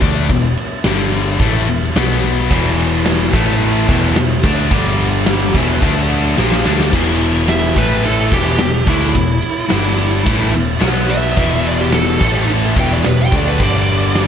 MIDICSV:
0, 0, Header, 1, 5, 480
1, 0, Start_track
1, 0, Tempo, 554529
1, 254, Time_signature, 4, 2, 24, 8
1, 12353, End_track
2, 0, Start_track
2, 0, Title_t, "Lead electric guitar"
2, 0, Program_c, 0, 29
2, 6487, Note_on_c, 0, 76, 78
2, 6714, Note_off_c, 0, 76, 0
2, 6735, Note_on_c, 0, 71, 90
2, 6959, Note_off_c, 0, 71, 0
2, 6981, Note_on_c, 0, 69, 91
2, 7202, Note_off_c, 0, 69, 0
2, 7212, Note_on_c, 0, 67, 85
2, 7670, Note_off_c, 0, 67, 0
2, 7696, Note_on_c, 0, 64, 108
2, 9095, Note_off_c, 0, 64, 0
2, 9616, Note_on_c, 0, 76, 102
2, 10076, Note_off_c, 0, 76, 0
2, 10104, Note_on_c, 0, 74, 87
2, 10210, Note_off_c, 0, 74, 0
2, 10221, Note_on_c, 0, 67, 88
2, 10335, Note_off_c, 0, 67, 0
2, 10335, Note_on_c, 0, 69, 94
2, 10797, Note_off_c, 0, 69, 0
2, 11077, Note_on_c, 0, 79, 101
2, 11179, Note_off_c, 0, 79, 0
2, 11188, Note_on_c, 0, 74, 87
2, 11294, Note_off_c, 0, 74, 0
2, 11311, Note_on_c, 0, 71, 88
2, 11416, Note_off_c, 0, 71, 0
2, 11440, Note_on_c, 0, 79, 117
2, 11541, Note_off_c, 0, 79, 0
2, 11563, Note_on_c, 0, 74, 107
2, 11663, Note_off_c, 0, 74, 0
2, 11673, Note_on_c, 0, 71, 106
2, 11793, Note_off_c, 0, 71, 0
2, 11793, Note_on_c, 0, 74, 101
2, 12353, Note_off_c, 0, 74, 0
2, 12353, End_track
3, 0, Start_track
3, 0, Title_t, "Distorted electric guitar"
3, 0, Program_c, 1, 30
3, 4, Note_on_c, 1, 50, 96
3, 7, Note_on_c, 1, 57, 99
3, 15, Note_on_c, 1, 62, 116
3, 242, Note_off_c, 1, 50, 0
3, 243, Note_off_c, 1, 57, 0
3, 247, Note_off_c, 1, 62, 0
3, 267, Note_on_c, 1, 40, 72
3, 273, Note_on_c, 1, 47, 86
3, 452, Note_off_c, 1, 40, 0
3, 455, Note_off_c, 1, 47, 0
3, 746, Note_on_c, 1, 43, 97
3, 748, Note_on_c, 1, 50, 104
3, 748, Note_on_c, 1, 55, 113
3, 1210, Note_off_c, 1, 43, 0
3, 1211, Note_off_c, 1, 50, 0
3, 1212, Note_off_c, 1, 55, 0
3, 1214, Note_on_c, 1, 45, 92
3, 1224, Note_on_c, 1, 52, 88
3, 1225, Note_on_c, 1, 57, 107
3, 1444, Note_off_c, 1, 45, 0
3, 1450, Note_off_c, 1, 52, 0
3, 1450, Note_off_c, 1, 57, 0
3, 1458, Note_on_c, 1, 40, 69
3, 1458, Note_on_c, 1, 47, 72
3, 1645, Note_off_c, 1, 40, 0
3, 1645, Note_off_c, 1, 47, 0
3, 1696, Note_on_c, 1, 54, 89
3, 1698, Note_on_c, 1, 47, 87
3, 1699, Note_on_c, 1, 59, 99
3, 2164, Note_off_c, 1, 54, 0
3, 2165, Note_off_c, 1, 47, 0
3, 2165, Note_off_c, 1, 59, 0
3, 2174, Note_on_c, 1, 40, 110
3, 2178, Note_on_c, 1, 47, 106
3, 2178, Note_on_c, 1, 52, 105
3, 2877, Note_off_c, 1, 47, 0
3, 2877, Note_off_c, 1, 52, 0
3, 2880, Note_off_c, 1, 40, 0
3, 2880, Note_on_c, 1, 45, 92
3, 2885, Note_on_c, 1, 57, 95
3, 2888, Note_on_c, 1, 52, 97
3, 3353, Note_off_c, 1, 45, 0
3, 3355, Note_off_c, 1, 57, 0
3, 3357, Note_off_c, 1, 52, 0
3, 3370, Note_on_c, 1, 40, 106
3, 3373, Note_on_c, 1, 47, 109
3, 3374, Note_on_c, 1, 52, 103
3, 3587, Note_off_c, 1, 40, 0
3, 3589, Note_off_c, 1, 47, 0
3, 3597, Note_on_c, 1, 40, 65
3, 3600, Note_off_c, 1, 52, 0
3, 3600, Note_on_c, 1, 47, 78
3, 3791, Note_off_c, 1, 40, 0
3, 3792, Note_off_c, 1, 47, 0
3, 3837, Note_on_c, 1, 50, 99
3, 3843, Note_on_c, 1, 57, 90
3, 3846, Note_on_c, 1, 62, 101
3, 4066, Note_off_c, 1, 50, 0
3, 4074, Note_off_c, 1, 57, 0
3, 4075, Note_off_c, 1, 62, 0
3, 4076, Note_on_c, 1, 50, 105
3, 4078, Note_on_c, 1, 43, 87
3, 4081, Note_on_c, 1, 55, 125
3, 4789, Note_off_c, 1, 50, 0
3, 4790, Note_off_c, 1, 43, 0
3, 4792, Note_off_c, 1, 55, 0
3, 4793, Note_on_c, 1, 40, 86
3, 4799, Note_on_c, 1, 47, 85
3, 4800, Note_on_c, 1, 52, 98
3, 5028, Note_off_c, 1, 40, 0
3, 5030, Note_off_c, 1, 47, 0
3, 5031, Note_off_c, 1, 52, 0
3, 5034, Note_on_c, 1, 50, 91
3, 5041, Note_on_c, 1, 57, 90
3, 5045, Note_on_c, 1, 62, 99
3, 5508, Note_off_c, 1, 50, 0
3, 5511, Note_off_c, 1, 57, 0
3, 5513, Note_off_c, 1, 62, 0
3, 5516, Note_on_c, 1, 46, 87
3, 5518, Note_on_c, 1, 58, 102
3, 5519, Note_on_c, 1, 53, 93
3, 5749, Note_off_c, 1, 46, 0
3, 5750, Note_off_c, 1, 53, 0
3, 5750, Note_off_c, 1, 58, 0
3, 5756, Note_on_c, 1, 50, 103
3, 5764, Note_on_c, 1, 57, 87
3, 5764, Note_on_c, 1, 62, 111
3, 5984, Note_on_c, 1, 40, 102
3, 5989, Note_off_c, 1, 50, 0
3, 5991, Note_off_c, 1, 57, 0
3, 5993, Note_off_c, 1, 62, 0
3, 5994, Note_on_c, 1, 52, 104
3, 5995, Note_on_c, 1, 47, 115
3, 6703, Note_off_c, 1, 40, 0
3, 6708, Note_off_c, 1, 47, 0
3, 6708, Note_off_c, 1, 52, 0
3, 6718, Note_on_c, 1, 45, 75
3, 6722, Note_on_c, 1, 52, 91
3, 6727, Note_on_c, 1, 57, 87
3, 7190, Note_off_c, 1, 45, 0
3, 7192, Note_off_c, 1, 52, 0
3, 7194, Note_off_c, 1, 57, 0
3, 7199, Note_on_c, 1, 40, 89
3, 7204, Note_on_c, 1, 47, 95
3, 7208, Note_on_c, 1, 52, 94
3, 7424, Note_off_c, 1, 40, 0
3, 7428, Note_off_c, 1, 47, 0
3, 7434, Note_on_c, 1, 40, 66
3, 7435, Note_off_c, 1, 52, 0
3, 7438, Note_on_c, 1, 47, 70
3, 7628, Note_off_c, 1, 40, 0
3, 7629, Note_off_c, 1, 47, 0
3, 7676, Note_on_c, 1, 50, 95
3, 7678, Note_on_c, 1, 57, 100
3, 7684, Note_on_c, 1, 62, 109
3, 7910, Note_off_c, 1, 50, 0
3, 7911, Note_off_c, 1, 57, 0
3, 7912, Note_on_c, 1, 40, 67
3, 7913, Note_off_c, 1, 62, 0
3, 7922, Note_on_c, 1, 47, 77
3, 8107, Note_off_c, 1, 40, 0
3, 8112, Note_off_c, 1, 47, 0
3, 8385, Note_on_c, 1, 43, 93
3, 8394, Note_on_c, 1, 50, 95
3, 8400, Note_on_c, 1, 55, 107
3, 8866, Note_off_c, 1, 43, 0
3, 8867, Note_off_c, 1, 50, 0
3, 8870, Note_on_c, 1, 45, 82
3, 8873, Note_off_c, 1, 55, 0
3, 8879, Note_on_c, 1, 57, 102
3, 8880, Note_on_c, 1, 52, 89
3, 9108, Note_off_c, 1, 45, 0
3, 9109, Note_on_c, 1, 40, 66
3, 9113, Note_off_c, 1, 52, 0
3, 9113, Note_off_c, 1, 57, 0
3, 9115, Note_on_c, 1, 47, 69
3, 9307, Note_off_c, 1, 40, 0
3, 9310, Note_off_c, 1, 47, 0
3, 9340, Note_on_c, 1, 47, 93
3, 9345, Note_on_c, 1, 54, 89
3, 9353, Note_on_c, 1, 59, 105
3, 9821, Note_off_c, 1, 47, 0
3, 9827, Note_off_c, 1, 54, 0
3, 9829, Note_on_c, 1, 40, 106
3, 9831, Note_off_c, 1, 59, 0
3, 9831, Note_on_c, 1, 47, 108
3, 9839, Note_on_c, 1, 52, 117
3, 10551, Note_off_c, 1, 40, 0
3, 10555, Note_off_c, 1, 52, 0
3, 10560, Note_off_c, 1, 47, 0
3, 10560, Note_on_c, 1, 45, 75
3, 10565, Note_on_c, 1, 52, 100
3, 10569, Note_on_c, 1, 57, 89
3, 11037, Note_off_c, 1, 45, 0
3, 11039, Note_off_c, 1, 52, 0
3, 11041, Note_off_c, 1, 57, 0
3, 11046, Note_on_c, 1, 40, 98
3, 11047, Note_on_c, 1, 47, 99
3, 11053, Note_on_c, 1, 52, 98
3, 11278, Note_off_c, 1, 40, 0
3, 11280, Note_off_c, 1, 47, 0
3, 11283, Note_off_c, 1, 52, 0
3, 11288, Note_on_c, 1, 40, 65
3, 11293, Note_on_c, 1, 47, 70
3, 11480, Note_off_c, 1, 40, 0
3, 11483, Note_off_c, 1, 47, 0
3, 11521, Note_on_c, 1, 50, 82
3, 11527, Note_on_c, 1, 57, 106
3, 11533, Note_on_c, 1, 62, 109
3, 11758, Note_off_c, 1, 50, 0
3, 11761, Note_off_c, 1, 57, 0
3, 11764, Note_off_c, 1, 62, 0
3, 11767, Note_on_c, 1, 43, 112
3, 11770, Note_on_c, 1, 50, 115
3, 11775, Note_on_c, 1, 55, 112
3, 12353, Note_off_c, 1, 43, 0
3, 12353, Note_off_c, 1, 50, 0
3, 12353, Note_off_c, 1, 55, 0
3, 12353, End_track
4, 0, Start_track
4, 0, Title_t, "Picked electric bass"
4, 0, Program_c, 2, 34
4, 23, Note_on_c, 2, 38, 93
4, 242, Note_off_c, 2, 38, 0
4, 259, Note_on_c, 2, 28, 74
4, 479, Note_off_c, 2, 28, 0
4, 739, Note_on_c, 2, 31, 100
4, 1181, Note_off_c, 2, 31, 0
4, 1215, Note_on_c, 2, 33, 101
4, 1435, Note_off_c, 2, 33, 0
4, 1455, Note_on_c, 2, 28, 75
4, 1675, Note_off_c, 2, 28, 0
4, 1694, Note_on_c, 2, 35, 99
4, 2136, Note_off_c, 2, 35, 0
4, 2176, Note_on_c, 2, 28, 87
4, 2854, Note_off_c, 2, 28, 0
4, 2893, Note_on_c, 2, 33, 91
4, 3334, Note_off_c, 2, 33, 0
4, 3370, Note_on_c, 2, 28, 86
4, 3589, Note_off_c, 2, 28, 0
4, 3611, Note_on_c, 2, 28, 87
4, 3829, Note_off_c, 2, 28, 0
4, 3847, Note_on_c, 2, 38, 101
4, 4067, Note_off_c, 2, 38, 0
4, 4082, Note_on_c, 2, 31, 90
4, 4765, Note_off_c, 2, 31, 0
4, 4803, Note_on_c, 2, 28, 103
4, 5024, Note_off_c, 2, 28, 0
4, 5042, Note_on_c, 2, 38, 80
4, 5486, Note_off_c, 2, 38, 0
4, 5523, Note_on_c, 2, 34, 102
4, 5743, Note_off_c, 2, 34, 0
4, 5766, Note_on_c, 2, 38, 86
4, 5984, Note_off_c, 2, 38, 0
4, 6002, Note_on_c, 2, 28, 92
4, 6684, Note_off_c, 2, 28, 0
4, 6726, Note_on_c, 2, 33, 92
4, 7168, Note_off_c, 2, 33, 0
4, 7201, Note_on_c, 2, 28, 88
4, 7422, Note_off_c, 2, 28, 0
4, 7454, Note_on_c, 2, 28, 84
4, 7669, Note_off_c, 2, 28, 0
4, 7682, Note_on_c, 2, 38, 100
4, 7903, Note_off_c, 2, 38, 0
4, 7929, Note_on_c, 2, 28, 75
4, 8147, Note_off_c, 2, 28, 0
4, 8412, Note_on_c, 2, 31, 98
4, 8853, Note_off_c, 2, 31, 0
4, 8884, Note_on_c, 2, 33, 95
4, 9106, Note_off_c, 2, 33, 0
4, 9123, Note_on_c, 2, 28, 70
4, 9345, Note_off_c, 2, 28, 0
4, 9365, Note_on_c, 2, 35, 113
4, 9810, Note_off_c, 2, 35, 0
4, 9844, Note_on_c, 2, 28, 84
4, 10531, Note_off_c, 2, 28, 0
4, 10575, Note_on_c, 2, 33, 105
4, 11018, Note_off_c, 2, 33, 0
4, 11054, Note_on_c, 2, 28, 88
4, 11275, Note_off_c, 2, 28, 0
4, 11293, Note_on_c, 2, 28, 87
4, 11514, Note_off_c, 2, 28, 0
4, 11534, Note_on_c, 2, 38, 91
4, 11755, Note_off_c, 2, 38, 0
4, 11773, Note_on_c, 2, 31, 85
4, 12353, Note_off_c, 2, 31, 0
4, 12353, End_track
5, 0, Start_track
5, 0, Title_t, "Drums"
5, 16, Note_on_c, 9, 36, 105
5, 17, Note_on_c, 9, 49, 62
5, 103, Note_off_c, 9, 36, 0
5, 104, Note_off_c, 9, 49, 0
5, 253, Note_on_c, 9, 49, 73
5, 255, Note_on_c, 9, 36, 84
5, 339, Note_off_c, 9, 49, 0
5, 341, Note_off_c, 9, 36, 0
5, 497, Note_on_c, 9, 49, 72
5, 584, Note_off_c, 9, 49, 0
5, 726, Note_on_c, 9, 49, 95
5, 728, Note_on_c, 9, 38, 116
5, 813, Note_off_c, 9, 49, 0
5, 815, Note_off_c, 9, 38, 0
5, 969, Note_on_c, 9, 49, 63
5, 1056, Note_off_c, 9, 49, 0
5, 1206, Note_on_c, 9, 49, 82
5, 1211, Note_on_c, 9, 36, 96
5, 1293, Note_off_c, 9, 49, 0
5, 1297, Note_off_c, 9, 36, 0
5, 1447, Note_on_c, 9, 49, 63
5, 1533, Note_off_c, 9, 49, 0
5, 1576, Note_on_c, 9, 38, 29
5, 1663, Note_off_c, 9, 38, 0
5, 1697, Note_on_c, 9, 49, 79
5, 1699, Note_on_c, 9, 38, 102
5, 1784, Note_off_c, 9, 49, 0
5, 1785, Note_off_c, 9, 38, 0
5, 1928, Note_on_c, 9, 49, 53
5, 2015, Note_off_c, 9, 49, 0
5, 2171, Note_on_c, 9, 36, 90
5, 2173, Note_on_c, 9, 49, 65
5, 2258, Note_off_c, 9, 36, 0
5, 2260, Note_off_c, 9, 49, 0
5, 2417, Note_on_c, 9, 49, 60
5, 2504, Note_off_c, 9, 49, 0
5, 2645, Note_on_c, 9, 49, 83
5, 2647, Note_on_c, 9, 38, 119
5, 2731, Note_off_c, 9, 49, 0
5, 2733, Note_off_c, 9, 38, 0
5, 2886, Note_on_c, 9, 36, 112
5, 2886, Note_on_c, 9, 49, 65
5, 2972, Note_off_c, 9, 49, 0
5, 2973, Note_off_c, 9, 36, 0
5, 3130, Note_on_c, 9, 49, 81
5, 3217, Note_off_c, 9, 49, 0
5, 3366, Note_on_c, 9, 36, 106
5, 3370, Note_on_c, 9, 49, 62
5, 3453, Note_off_c, 9, 36, 0
5, 3457, Note_off_c, 9, 49, 0
5, 3602, Note_on_c, 9, 49, 83
5, 3603, Note_on_c, 9, 38, 102
5, 3688, Note_off_c, 9, 49, 0
5, 3690, Note_off_c, 9, 38, 0
5, 3841, Note_on_c, 9, 36, 99
5, 3843, Note_on_c, 9, 49, 68
5, 3927, Note_off_c, 9, 36, 0
5, 3930, Note_off_c, 9, 49, 0
5, 4077, Note_on_c, 9, 49, 81
5, 4079, Note_on_c, 9, 36, 92
5, 4164, Note_off_c, 9, 49, 0
5, 4166, Note_off_c, 9, 36, 0
5, 4322, Note_on_c, 9, 49, 70
5, 4408, Note_off_c, 9, 49, 0
5, 4555, Note_on_c, 9, 49, 93
5, 4556, Note_on_c, 9, 38, 118
5, 4641, Note_off_c, 9, 49, 0
5, 4643, Note_off_c, 9, 38, 0
5, 4800, Note_on_c, 9, 36, 91
5, 4801, Note_on_c, 9, 49, 102
5, 4886, Note_off_c, 9, 36, 0
5, 4888, Note_off_c, 9, 49, 0
5, 5038, Note_on_c, 9, 36, 112
5, 5040, Note_on_c, 9, 49, 92
5, 5125, Note_off_c, 9, 36, 0
5, 5127, Note_off_c, 9, 49, 0
5, 5278, Note_on_c, 9, 49, 62
5, 5364, Note_off_c, 9, 49, 0
5, 5398, Note_on_c, 9, 38, 34
5, 5484, Note_off_c, 9, 38, 0
5, 5518, Note_on_c, 9, 38, 58
5, 5605, Note_off_c, 9, 38, 0
5, 5641, Note_on_c, 9, 38, 73
5, 5728, Note_off_c, 9, 38, 0
5, 5758, Note_on_c, 9, 38, 87
5, 5844, Note_off_c, 9, 38, 0
5, 5885, Note_on_c, 9, 38, 88
5, 5972, Note_off_c, 9, 38, 0
5, 6000, Note_on_c, 9, 36, 91
5, 6003, Note_on_c, 9, 49, 72
5, 6003, Note_on_c, 9, 57, 109
5, 6086, Note_off_c, 9, 36, 0
5, 6090, Note_off_c, 9, 49, 0
5, 6090, Note_off_c, 9, 57, 0
5, 6237, Note_on_c, 9, 49, 55
5, 6323, Note_off_c, 9, 49, 0
5, 6475, Note_on_c, 9, 49, 84
5, 6476, Note_on_c, 9, 38, 104
5, 6561, Note_off_c, 9, 49, 0
5, 6563, Note_off_c, 9, 38, 0
5, 6717, Note_on_c, 9, 49, 56
5, 6720, Note_on_c, 9, 36, 100
5, 6804, Note_off_c, 9, 49, 0
5, 6807, Note_off_c, 9, 36, 0
5, 6960, Note_on_c, 9, 49, 80
5, 7046, Note_off_c, 9, 49, 0
5, 7197, Note_on_c, 9, 49, 63
5, 7201, Note_on_c, 9, 36, 104
5, 7283, Note_off_c, 9, 49, 0
5, 7287, Note_off_c, 9, 36, 0
5, 7322, Note_on_c, 9, 38, 30
5, 7409, Note_off_c, 9, 38, 0
5, 7431, Note_on_c, 9, 49, 89
5, 7433, Note_on_c, 9, 38, 120
5, 7518, Note_off_c, 9, 49, 0
5, 7519, Note_off_c, 9, 38, 0
5, 7673, Note_on_c, 9, 49, 63
5, 7680, Note_on_c, 9, 36, 113
5, 7760, Note_off_c, 9, 49, 0
5, 7766, Note_off_c, 9, 36, 0
5, 7918, Note_on_c, 9, 49, 73
5, 7921, Note_on_c, 9, 36, 85
5, 8005, Note_off_c, 9, 49, 0
5, 8008, Note_off_c, 9, 36, 0
5, 8156, Note_on_c, 9, 49, 74
5, 8242, Note_off_c, 9, 49, 0
5, 8396, Note_on_c, 9, 49, 89
5, 8398, Note_on_c, 9, 38, 116
5, 8483, Note_off_c, 9, 49, 0
5, 8484, Note_off_c, 9, 38, 0
5, 8642, Note_on_c, 9, 49, 64
5, 8729, Note_off_c, 9, 49, 0
5, 8886, Note_on_c, 9, 36, 112
5, 8888, Note_on_c, 9, 49, 85
5, 8972, Note_off_c, 9, 36, 0
5, 8975, Note_off_c, 9, 49, 0
5, 9007, Note_on_c, 9, 38, 32
5, 9093, Note_off_c, 9, 38, 0
5, 9120, Note_on_c, 9, 49, 71
5, 9207, Note_off_c, 9, 49, 0
5, 9358, Note_on_c, 9, 49, 87
5, 9359, Note_on_c, 9, 38, 99
5, 9444, Note_off_c, 9, 49, 0
5, 9446, Note_off_c, 9, 38, 0
5, 9600, Note_on_c, 9, 49, 62
5, 9687, Note_off_c, 9, 49, 0
5, 9838, Note_on_c, 9, 49, 67
5, 9844, Note_on_c, 9, 36, 93
5, 9925, Note_off_c, 9, 49, 0
5, 9931, Note_off_c, 9, 36, 0
5, 10079, Note_on_c, 9, 49, 63
5, 10165, Note_off_c, 9, 49, 0
5, 10321, Note_on_c, 9, 49, 79
5, 10322, Note_on_c, 9, 38, 111
5, 10407, Note_off_c, 9, 49, 0
5, 10409, Note_off_c, 9, 38, 0
5, 10567, Note_on_c, 9, 49, 99
5, 10569, Note_on_c, 9, 36, 107
5, 10654, Note_off_c, 9, 49, 0
5, 10655, Note_off_c, 9, 36, 0
5, 10810, Note_on_c, 9, 49, 81
5, 10897, Note_off_c, 9, 49, 0
5, 11046, Note_on_c, 9, 49, 62
5, 11049, Note_on_c, 9, 36, 104
5, 11133, Note_off_c, 9, 49, 0
5, 11135, Note_off_c, 9, 36, 0
5, 11170, Note_on_c, 9, 38, 33
5, 11257, Note_off_c, 9, 38, 0
5, 11290, Note_on_c, 9, 49, 86
5, 11292, Note_on_c, 9, 38, 103
5, 11377, Note_off_c, 9, 49, 0
5, 11379, Note_off_c, 9, 38, 0
5, 11532, Note_on_c, 9, 36, 111
5, 11533, Note_on_c, 9, 49, 61
5, 11619, Note_off_c, 9, 36, 0
5, 11620, Note_off_c, 9, 49, 0
5, 11773, Note_on_c, 9, 36, 103
5, 11775, Note_on_c, 9, 49, 80
5, 11859, Note_off_c, 9, 36, 0
5, 11861, Note_off_c, 9, 49, 0
5, 12006, Note_on_c, 9, 49, 75
5, 12093, Note_off_c, 9, 49, 0
5, 12251, Note_on_c, 9, 49, 91
5, 12252, Note_on_c, 9, 38, 120
5, 12337, Note_off_c, 9, 49, 0
5, 12339, Note_off_c, 9, 38, 0
5, 12353, End_track
0, 0, End_of_file